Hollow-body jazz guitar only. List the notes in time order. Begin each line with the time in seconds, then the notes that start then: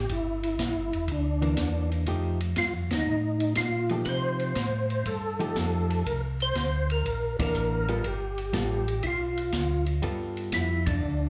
1.42 E3 A#3 D4
2.07 F3 A3 D#4 G4
3.91 F3 A3 D#4 G4
5.39 F3 A3 D#4 G4
7.39 E3 A#3 D4
7.89 G3 B3 F4 A4
8.53 G3 B3 F4 A4
10.02 G3 B3 F4 A4